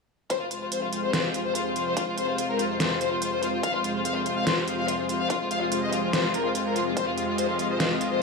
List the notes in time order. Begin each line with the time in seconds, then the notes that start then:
0.30 F2 C3 G#3 F4 C5, kick, closed hi-hat
0.40 F4
0.51 F4, closed hi-hat
0.61 F4
0.72 C5, closed hi-hat
0.82 F4
0.93 F4, closed hi-hat
1.03 C5
1.13 F4, snare, closed hi-hat
1.24 F4
1.34 F4, closed hi-hat
1.45 C5
1.55 F4, closed hi-hat
1.65 F4
1.76 F4, closed hi-hat
1.86 C5
1.97 F4, kick, closed hi-hat
2.07 F4
2.17 C5, closed hi-hat
2.28 F4
2.38 F4, closed hi-hat
2.49 A#4
2.59 F4, closed hi-hat
2.70 F4
2.80 C5, snare, closed hi-hat
2.90 F4
3.01 C5, closed hi-hat
3.11 F4
3.22 F4, closed hi-hat
3.32 C5
3.42 F4, closed hi-hat
3.53 F4
3.63 F5, kick, closed hi-hat
3.74 F4
3.84 F4, closed hi-hat
3.95 F4
4.05 F5, closed hi-hat
4.15 F4
4.26 F4, closed hi-hat
4.36 F5
4.47 F4, snare, closed hi-hat
4.57 F4
4.68 F4, closed hi-hat
4.78 F5
4.88 F4, closed hi-hat
4.99 F4
5.09 F4, closed hi-hat
5.20 F5
5.30 F4, kick, closed hi-hat
5.40 F4
5.51 F5, closed hi-hat
5.61 F4
5.72 F4, closed hi-hat
5.82 D#5
5.92 F4, closed hi-hat
6.03 F4
6.13 C5, snare, closed hi-hat
6.24 F4
6.34 A#4, closed hi-hat
6.45 F4
6.55 F4, closed hi-hat
6.65 A#4
6.76 F4, closed hi-hat
6.86 F4
6.97 C5 D#5, kick, closed hi-hat
7.07 F4
7.17 F4, closed hi-hat
7.28 F4
7.38 C5, closed hi-hat
7.49 F4
7.59 F4, closed hi-hat
7.70 C5
7.80 F4, snare, closed hi-hat
7.90 F4
8.01 F4, closed hi-hat
8.11 C5